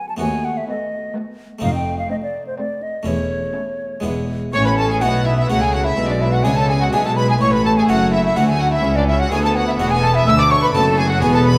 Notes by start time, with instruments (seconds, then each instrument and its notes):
Already playing: harpsichord B3 F#4
0.09 flute A5
0.17 double bass section D#2, cello section D#2, harpsichord A3 B3 F#4, flute G#5
0.21 harpsichord D#2
0.45 flute F#5
0.57 flute E5
0.68 viola section A3, violin section B3 F#4, flute D#5
1.15 viola section A3, violin section B3 F#4
1.59 double bass section F1, cello section F2, harpsichord A3 C4 D#4, flute F5
1.63 harpsichord F2
1.74 flute G5
1.99 flute F5
2.10 viola section A3, violin section C4 D#4, flute D#5
2.23 flute D5
2.47 flute C5
2.58 viola section A3, violin section C4 D#4, flute D5
2.83 flute D#5
3.03 double bass section E1, cello section E2, harpsichord A3 C#4 E4
3.07 harpsichord E2, flute C#5
3.56 viola section A3, violin section C#4 E4
4.00 harpsichord G#3 B3 E4
4.04 double bass section E1, cello section E2, harpsichord E2, viola section G#3, violin section B3 E4
4.53 double bass section A1, cello section A2, harpsichord A2, viola section C#4, violin section C#5 C#6, flute C#6
4.66 violin section B4 B5, flute B5
4.77 violin section A4 A5, flute A5
4.89 violin section G#4 G#5, flute G#5
5.01 double bass section B1, cello section B2, harpsichord B2 A3 C#4 E4, viola section B3, violin section F#4 F#5, flute F#5
5.25 violin section E4 E5, flute E5
5.37 violin section E4 E5, flute E5
5.49 double bass section C#2, cello section C#3, harpsichord C#3 A3 C#4 E4, viola section A3, violin section F#4 F#5, flute F#5
5.60 violin section G#4 G#5, flute G#5
5.72 violin section F#4 F#5, flute F#5
5.85 violin section E4 E5, flute E5
5.97 double bass section B1, cello section B2, harpsichord B2, viola section G#3
6.08 violin section D4 D5, flute D5
6.21 violin section E4 E5, flute E5
6.32 violin section F#4 F#5, flute F#5
6.44 double bass section C#2, cello section C#3, harpsichord C#3 G#3 D4 E4, viola section G#3, violin section G#4 G#5, flute G#5
6.56 violin section A4 A5, flute A5
6.68 violin section G#4 G#5, flute G#5
6.81 violin section F#4 F#5, flute F#5
6.92 double bass section B1, cello section B2, harpsichord B2 G#3 D4 E4, violin section G#4 G#5, flute G#5
7.05 violin section A4 A5, flute A5
7.17 violin section B4 B5, flute B5
7.29 violin section G#4 G#5, flute G#5
7.41 double bass section A1, cello section A2, harpsichord A2, viola section A3, violin section C#5 C#6, flute C#6
7.53 violin section B4 B5, flute B5
7.64 violin section A4 A5, flute A5
7.76 violin section G#4 G#5, flute G#5
7.88 double bass section F#1, cello section F#2, harpsichord F#2 A3 C#4 E4, violin section F#4 F#5, flute F#5
8.13 violin section E4 E5, flute E5
8.25 violin section E4 E5, flute E5
8.36 cello section D2, double bass section D2, harpsichord D2 A3 C#4 E4, viola section A3, violin section F#4 F#5, flute F#5
8.48 violin section G#4 G#5, flute G#5
8.59 violin section F#4 F#5, flute F#5
8.72 violin section E4 E5, flute E5
8.84 cello section C#2, double bass section C#2, harpsichord C#2, viola section C#4
8.96 violin section D4 D5, flute D5
9.08 violin section E4 E5, flute E5
9.19 violin section F#4 F#5, flute F#5
9.30 cello section D2, harpsichord D2 A3 C#4 E4, double bass section D2, viola section B3, violin section G#4 G#5, flute G#5
9.42 violin section A4 A5, flute A5
9.55 violin section F#4 F#5, flute F#5
9.67 violin section E4 E5, flute E5
9.79 double bass section E1, cello section E2, harpsichord E2 A3 C#4 E4, violin section F#4 F#5, flute F#5
9.91 violin section G#4 G#5, flute G#5
10.02 violin section A4 A5, flute A5
10.14 violin section E4 E5, flute E5
10.27 cello section D2, double bass section D2, harpsichord D2, viola section A3, violin section E5 E6, flute E6
10.38 violin section D5 D6, flute D6
10.51 violin section C#5 C#6, flute C#6
10.62 violin section B4 B5, flute B5
10.74 double bass section F#1, harpsichord F#2 B3 F#4, cello section F#2, viola section A3, violin section A4 A5, flute A5
10.98 violin section G#4 G#5, flute G#5
11.09 violin section F#4 F#5, flute F#5
11.21 double bass section E1, cello section E2, harpsichord E2 B3 F#4, viola section B3, violin section G#4 G#5, flute G#5
11.33 violin section A4 A5, flute A5
11.45 violin section B4 B5, flute B5